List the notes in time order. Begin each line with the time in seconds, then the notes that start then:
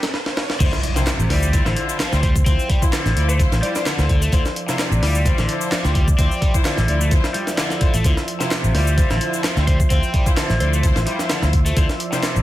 Already playing: riser
0.03 snare, closed hi-hat, shaker
0.14 snare
0.26 snare
0.37 snare
0.50 snare
0.60 D2 D3 F3 E4 F4 C5 E5, kick, closed hi-hat, crash, impact, shaker
0.73 snare, shaker
0.83 closed hi-hat
0.96 C3 E4 F4 C5, snare, shaker
1.07 snare, clap, closed hi-hat, shaker
1.19 A1, shaker
1.29 D2 G3 E4 F4 D5, snare, open hi-hat
1.43 shaker
1.53 E4 F4 C5, kick, closed hi-hat, shaker
1.65 A1 D3, snare, shaker
1.76 E4 F4 C5, closed hi-hat
1.89 shaker
2.00 F3, snare, clap, closed hi-hat, shaker
2.12 D2 G3 E4 F4 C5, snare, shaker
2.22 G3 C5, kick, closed hi-hat
2.36 kick, shaker
2.46 D2 C4 E4 F4 C5, kick, closed hi-hat, shaker
2.59 shaker
2.69 G3, kick, closed hi-hat
2.82 E4 F4 C5, kick, shaker
2.93 D3, snare, clap, closed hi-hat, shaker
3.05 A1, snare, shaker
3.16 D2 E4 F4 D5, closed hi-hat
3.28 A3 C5, shaker
3.39 E4 F4 C5, kick, closed hi-hat, shaker
3.52 A1, snare, shaker
3.62 G3 E4 F4 C5 D5, closed hi-hat
3.75 D5, snare, shaker
3.86 D3, snare, clap, closed hi-hat, shaker
3.99 D2 E4 F4 C5, snare, shaker
4.09 kick, closed hi-hat
4.22 A3, closed hi-hat, shaker
4.32 D2 D3 E4 F4 C5 D5, kick, closed hi-hat, shaker
4.45 snare, shaker
4.56 closed hi-hat
4.68 C3 E4 F4 C5, snare, shaker
4.79 snare, clap, closed hi-hat, shaker
4.91 A1, shaker
5.02 D2 G3 E4 F4 D5, snare, open hi-hat
5.15 shaker
5.25 E4 F4 C5, kick, closed hi-hat, shaker
5.38 A1 D3, snare, shaker
5.48 E4 F4 C5, closed hi-hat
5.61 shaker
5.72 F3, snare, clap, closed hi-hat, shaker
5.84 D2 G3 E4 F4 C5, snare, shaker
5.95 G3, kick, closed hi-hat
6.08 kick, shaker
6.18 D2 C4 E4 F4 C5, kick, closed hi-hat, shaker
6.31 shaker
6.41 G3, kick, closed hi-hat
6.54 E4 F4 C5, kick, shaker
6.65 D3, snare, clap, closed hi-hat, shaker
6.77 A1, snare, shaker
6.88 D2 E4 F4 D5, closed hi-hat
7.01 A3, shaker
7.11 E4 F4 C5, kick, closed hi-hat, shaker
7.24 snare, shaker
7.34 G3, closed hi-hat
7.47 snare, shaker
7.58 D3 E4 F4 D5, snare, clap, closed hi-hat, shaker
7.70 snare, shaker
7.81 E4 F4 C5, kick, closed hi-hat
7.94 A1 A3, closed hi-hat, shaker
8.04 D2 D3 E4 F4 C5, kick, closed hi-hat, shaker
8.17 snare, shaker
8.28 closed hi-hat
8.40 C3 E4 F4 C5, snare, shaker
8.51 snare, clap, closed hi-hat, shaker
8.64 A1, shaker
8.74 D2 G3 E4 F4 D5, snare, open hi-hat
8.87 shaker
8.97 E4 F4 C5, kick, closed hi-hat, shaker
9.10 A1 D3, snare, shaker
9.21 E4 F4 C5, closed hi-hat
9.34 shaker
9.44 F3, snare, clap, closed hi-hat, shaker
9.56 D2 G3 E4 F4 C5, snare, shaker
9.67 G3 C5, kick, closed hi-hat
9.80 kick, shaker
9.90 D2 C4 E4 F4 C5, kick, closed hi-hat, shaker
10.03 shaker
10.14 G3, kick, closed hi-hat
10.26 E4 F4 C5, kick, shaker
10.37 D3, snare, clap, closed hi-hat, shaker
10.50 A1, snare, shaker
10.60 D2 E4 F4 C5 D5, closed hi-hat
10.73 A3, shaker
10.83 E4 F4 C5, kick, closed hi-hat, shaker
10.96 A1, snare, shaker
11.07 G3 E4 F4 C5, closed hi-hat
11.19 snare, shaker
11.30 D3, snare, clap, closed hi-hat, shaker
11.42 D2 E4 F4 C5, snare, shaker
11.53 kick, closed hi-hat
11.66 A3, closed hi-hat, shaker
11.76 D2 D3 E4 F4 C5 D5, kick, closed hi-hat, shaker
11.89 snare, shaker
12.00 closed hi-hat
12.12 C3 E4 F4 C5, snare, shaker
12.23 snare, clap, closed hi-hat, shaker
12.36 A1, shaker